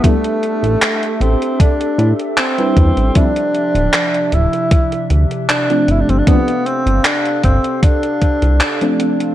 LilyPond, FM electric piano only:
\new Staff \with { instrumentName = "FM electric piano" } { \time 4/4 \key d \dorian \tempo 4 = 77 <g b d' e'>16 r2. <g d' e' b'>8. | <f g c' e'>16 r2. <f a c' d'>8. | <f a c' d'>16 r2. <f a c' d'>8. | }